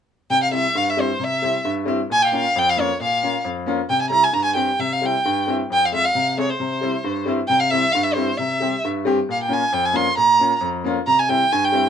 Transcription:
0.30 0.64 C3 medium
0.30 0.41 G5 medium
0.43 0.53 F5 medium
0.51 0.63 G3 soft
0.51 0.64 C4 soft
0.51 0.64 E4 medium
0.51 0.79 E5 medium
0.75 1.09 G2 medium
0.75 0.91 F5 medium
0.89 1.02 E5 medium
0.97 1.09 G3 medium
0.97 1.09 C4 medium
0.97 1.10 E4 medium
0.97 1.26 C5 medium
1.20 1.53 C3 medium
1.24 1.67 E5 medium
1.42 1.54 G3 soft
1.42 1.54 C4 medium
1.42 1.55 E4 medium
1.65 1.98 G2 medium
1.85 1.98 G3 medium
1.85 1.98 C4 medium
1.85 1.99 E4 medium
2.10 2.44 A#2 medium
2.10 2.24 G#5 loud
2.22 2.30 F5 medium
2.22 2.26 G5 medium
2.28 2.44 A#3 medium
2.28 2.33 G5 medium
2.32 2.44 C#4 soft
2.32 2.44 F4 medium
2.32 2.60 F5 medium
2.56 2.89 F2 medium
2.56 2.71 G5 medium
2.69 2.82 F5 medium
2.77 2.89 A#3 medium
2.77 2.89 C#4 medium
2.77 2.89 F4 medium
2.77 3.02 C#5 medium
3.00 3.34 A#2 medium
3.00 3.43 F5 medium
3.23 3.34 A#3 medium
3.23 3.34 C#4 medium
3.23 3.35 F4 medium
3.45 3.78 F2 medium
3.66 3.78 A#3 medium
3.66 3.79 C#4 medium
3.66 3.79 F4 medium
3.89 4.23 C3 medium
3.89 4.00 G5 medium
4.01 4.10 G#5 medium
4.10 4.22 G3 medium
4.10 4.23 C4 soft
4.10 4.23 E4 medium
4.10 4.25 A#5 medium
4.24 4.35 G#5 medium
4.33 4.67 G2 medium
4.33 4.44 A#5 medium
4.44 4.55 G#5 medium
4.55 4.67 G3 medium
4.55 4.68 C4 medium
4.55 4.68 G4 medium
4.55 4.81 G5 medium
4.79 5.13 C3 medium
4.79 4.94 E5 medium
4.93 5.07 F5 medium
5.01 5.13 G3 medium
5.01 5.14 C4 soft
5.01 5.14 E4 medium
5.06 5.49 G5 medium
5.25 5.58 G2 medium
5.47 5.58 G3 medium
5.47 5.59 C4 medium
5.47 5.59 E4 medium
5.70 6.03 F2 soft
5.70 5.87 G5 medium
5.85 5.94 F5 medium
5.92 6.03 G#3 medium
5.92 6.04 C4 soft
5.92 6.04 F4 medium
5.92 6.06 E5 medium
6.05 6.38 F5 medium
6.15 6.48 C3 medium
6.37 6.48 G#3 medium
6.37 6.49 C4 medium
6.37 6.49 G#4 medium
6.37 6.51 C#5 medium
6.50 7.27 C5 medium
6.60 6.93 C3 medium
6.81 6.93 G3 medium
6.81 6.93 C4 medium
6.81 6.94 E4 medium
7.04 7.37 G2 medium
7.25 7.37 G3 medium
7.25 7.38 C4 medium
7.25 7.38 E4 medium
7.48 7.83 C3 medium
7.48 7.61 G5 medium
7.60 7.72 F5 medium
7.70 7.83 G3 medium
7.70 7.83 C4 medium
7.70 7.84 E4 medium
7.70 7.94 E5 loud
7.92 8.27 G2 medium
7.92 8.05 F5 medium
8.03 8.15 E5 medium
8.13 8.27 G3 medium
8.13 8.28 C4 medium
8.13 8.39 C5 medium
8.18 8.28 E4 medium
8.37 8.72 C3 soft
8.37 8.83 E5 medium
8.60 8.72 G3 medium
8.60 8.72 C4 medium
8.60 8.73 G4 medium
8.84 9.17 G2 medium
9.05 9.17 G3 medium
9.05 9.17 C4 medium
9.05 9.17 G4 medium
9.29 9.62 A#2 medium
9.29 9.40 F5 medium
9.43 9.54 G5 medium
9.48 9.61 A#3 medium
9.48 9.61 C#4 medium
9.48 9.62 F4 medium
9.53 9.75 G#5 medium
9.73 10.06 F2 medium
9.73 9.87 G5 medium
9.85 9.97 G#5 medium
9.93 10.06 A#3 medium
9.93 10.06 C#4 medium
9.93 10.06 F4 medium
9.93 10.17 C6 medium
10.17 10.51 A#2 medium
10.17 10.60 A#5 medium
10.39 10.51 A#3 medium
10.39 10.51 C#4 medium
10.39 10.52 F4 medium
10.61 10.95 F2 medium
10.84 10.96 A#3 medium
10.84 10.96 C#4 medium
10.84 10.97 F4 medium
11.07 11.41 C3 medium
11.07 11.21 A#5 medium
11.19 11.30 G#5 medium
11.29 11.41 G3 soft
11.29 11.41 C4 medium
11.29 11.41 E4 medium
11.29 11.54 G5 medium
11.52 11.86 G2 medium
11.52 11.66 G#5 medium
11.64 11.86 G5 medium
11.72 11.85 G3 medium
11.72 11.85 C4 medium
11.72 11.85 E4 medium

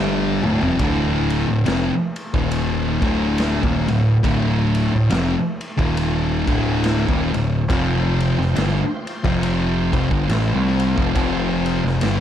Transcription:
0.00 0.40 G1 medium
0.00 0.42 G2 medium
0.00 0.43 D3 loud
0.00 0.43 G3 loud
0.00 0.76 D4 medium
0.00 0.76 E5 medium
0.00 0.76 A5 medium
0.43 0.60 D1 medium
0.43 0.61 D2 medium
0.43 0.61 A2 medium
0.43 mid tom medium
0.62 0.78 F1 loud
0.62 0.79 F2 medium
0.62 0.79 C3 loud
0.62 floor tom medium
0.79 1.44 D1 loud
0.79 1.47 D2 medium
0.79 1.47 A2 medium
0.79 1.47 D3 loud
0.79 kick loud
0.79 ride medium
1.30 ride medium
1.48 1.65 D1 medium
1.48 1.65 D2 medium
1.48 1.66 A2 medium
1.65 1.90 F1 medium
1.65 1.89 F2 medium
1.65 1.90 C3 loud
1.65 snare loud
1.65 ride medium
2.16 ride medium
2.34 2.98 D#1 medium
2.34 3.01 D#2 medium
2.34 3.01 A#2 medium
2.34 3.01 D#3 medium
2.34 kick loud
2.51 ride medium
3.01 3.59 D1 medium
3.01 3.61 D2 loud
3.01 3.61 A2 medium
3.01 3.62 D3 loud
3.01 kick loud
3.01 ride medium
3.38 snare loud
3.38 ride medium
3.62 3.87 D#1 medium
3.62 3.86 D#2 medium
3.62 3.87 A#2 loud
3.62 kick loud
3.88 4.22 D1 medium
3.88 4.17 D2 medium
3.88 4.17 A2 medium
3.88 ride medium
4.23 4.89 D1 medium
4.23 4.90 D2 medium
4.23 4.91 A2 medium
4.23 4.91 D3 medium
4.23 kick loud
4.23 ride medium
4.75 ride medium
4.92 5.10 D1 medium
4.92 5.09 D2 medium
4.92 5.10 A2 medium
5.10 5.34 F1 medium
5.10 5.34 F2 medium
5.10 5.34 C3 loud
5.10 snare loud
5.10 ride loud
5.61 ride medium
5.77 6.43 D#1 medium
5.77 6.45 D#2 medium
5.77 6.45 A#2 medium
5.77 6.45 D#3 loud
5.77 kick loud
5.97 ride medium
6.46 7.05 D1 medium
6.46 7.06 D2 medium
6.46 7.07 A2 loud
6.46 7.07 D3 loud
6.46 kick loud
6.46 ride medium
6.84 snare loud
6.84 ride medium
7.09 7.32 D#1 medium
7.09 7.32 D#2 medium
7.09 7.32 A#2 loud
7.09 kick loud
7.33 7.68 D1 medium
7.33 7.62 D2 medium
7.33 7.62 A2 medium
7.33 ride medium
7.68 8.34 F1 loud
7.68 8.36 F2 medium
7.68 8.37 C3 loud
7.68 8.37 F3 loud
7.68 12.20 F4 medium
7.68 12.20 C5 medium
7.68 12.20 G5 medium
7.68 kick loud
7.68 ride medium
8.20 ride medium
8.38 8.55 F1 medium
8.38 8.55 F2 medium
8.38 8.55 C3 medium
8.38 snare soft
8.55 8.80 G1 loud
8.55 8.79 G2 medium
8.55 8.79 D3 loud
8.55 snare loud
8.55 ride medium
9.07 ride medium
9.24 9.89 F1 medium
9.24 9.91 F2 medium
9.24 9.91 C3 medium
9.24 9.92 F3 loud
9.24 kick loud
9.24 snare soft
9.43 ride medium
9.92 10.10 F1 medium
9.92 10.09 F2 medium
9.92 10.10 C3 loud
9.92 kick loud
9.92 ride medium
10.10 10.28 G1 loud
10.10 10.28 G2 medium
10.10 10.28 D3 loud
10.10 kick loud
10.28 10.53 A1 medium
10.28 10.52 A2 medium
10.28 10.52 E3 loud
10.28 snare loud
10.28 ride medium
10.53 10.95 C2 medium
10.53 10.96 C3 medium
10.53 10.96 G3 medium
10.53 10.96 C4 medium
10.80 ride medium
10.96 11.15 F1 medium
10.96 11.14 F2 loud
10.96 11.14 C3 loud
10.96 kick loud
11.15 11.80 F1 medium
11.15 11.83 F2 medium
11.15 11.83 C3 medium
11.15 11.83 F3 loud
11.15 kick loud
11.15 ride loud
11.66 ride medium
11.84 12.01 F1 medium
11.84 12.01 F2 medium
11.84 12.02 C3 medium
11.84 snare soft
12.01 12.20 G1 medium
12.01 12.20 G2 medium
12.01 12.20 D3 medium
12.01 snare loud
12.01 ride loud

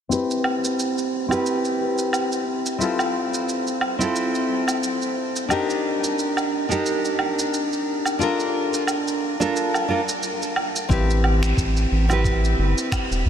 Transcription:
0.09 1.26 C4 medium
0.09 1.26 E4 medium
0.09 1.27 G4 medium
0.09 1.28 B4 medium
0.09 shaker soft
0.31 shaker soft
0.44 low woodblock medium
0.64 shaker medium
0.79 shaker soft
0.98 shaker soft
1.28 2.44 C4 medium
1.28 2.45 E4 medium
1.28 2.45 G4 medium
1.28 low woodblock medium
1.28 shaker medium
1.33 2.46 B4 loud
1.46 shaker soft
1.65 shaker soft
1.98 shaker medium
2.13 low woodblock medium
2.13 shaker soft
2.32 shaker soft
2.66 shaker medium
2.78 3.95 C4 medium
2.78 3.96 E4 medium
2.78 3.96 F4 medium
2.78 shaker soft
2.82 3.97 A4 medium
2.99 low woodblock medium
2.99 shaker soft
3.34 shaker medium
3.49 shaker soft
3.67 shaker soft
3.81 low woodblock medium
3.99 5.46 C4 medium
3.99 5.47 E4 medium
3.99 5.47 F4 medium
3.99 shaker medium
4.03 5.48 A4 loud
4.16 shaker medium
4.35 shaker soft
4.68 low woodblock medium
4.68 shaker medium
4.83 shaker soft
5.02 shaker soft
5.36 shaker medium
5.48 6.65 D4 medium
5.48 6.66 D#4 medium
5.48 6.66 G4 medium
5.48 low woodblock medium
5.48 shaker medium
5.52 6.67 A#4 medium
5.70 shaker soft
6.04 shaker medium
6.19 shaker soft
6.37 low woodblock medium
6.37 shaker soft
6.69 8.16 D4 medium
6.69 8.16 D#4 medium
6.69 8.17 G4 medium
6.69 8.18 A#4 loud
6.69 shaker medium
6.86 shaker medium
7.05 shaker soft
7.19 low woodblock medium
7.39 shaker medium
7.54 shaker medium
7.73 shaker soft
8.05 low woodblock medium
8.05 shaker medium
8.19 9.35 D4 medium
8.19 9.36 F4 medium
8.19 9.36 A4 medium
8.19 shaker medium
8.23 9.37 A#4 medium
8.40 shaker soft
8.74 shaker medium
8.87 low woodblock medium
8.87 shaker medium
9.08 shaker soft
9.40 9.86 D4 medium
9.40 9.86 F4 medium
9.40 9.87 A4 medium
9.40 9.87 A#4 loud
9.40 shaker medium
9.56 shaker medium
9.74 low woodblock medium
9.74 shaker soft
9.88 10.00 D4 medium
9.88 10.00 F4 medium
9.88 10.01 A4 medium
9.88 10.01 A#4 medium
10.09 shaker medium
10.23 shaker medium
10.42 shaker soft
10.56 low woodblock medium
10.76 shaker medium
10.89 11.53 A1 loud
10.89 12.05 C4 medium
10.89 12.06 E4 medium
10.89 12.06 G4 medium
10.89 kick loud
10.89 shaker soft
10.93 12.07 B4 medium
11.10 shaker soft
11.24 low woodblock medium
11.43 finger snap medium
11.43 shaker medium
11.57 11.86 A1 medium
11.57 kick loud
11.57 shaker medium
11.77 shaker soft
11.92 12.55 A1 medium
12.09 13.24 C4 medium
12.09 13.24 E4 medium
12.09 13.25 G4 medium
12.09 13.26 B4 loud
12.09 low woodblock medium
12.09 shaker medium
12.24 kick loud
12.24 shaker medium
12.44 shaker soft
12.58 12.74 G1 loud
12.78 shaker medium
12.92 finger snap medium
12.92 kick loud
12.92 low woodblock medium
12.92 shaker medium
13.11 13.23 E1 medium
13.11 shaker soft
13.25 13.29 D2 loud

